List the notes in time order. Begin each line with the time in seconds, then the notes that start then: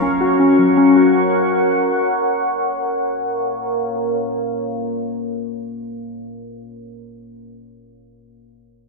Already playing: F#3 A#4 C#5 F#5 C#6
0.02 C#4
0.21 F#4
0.39 C#4
0.59 F#3
0.77 C#4
0.96 F#4
2.85 A#3 A#4 C#5 F5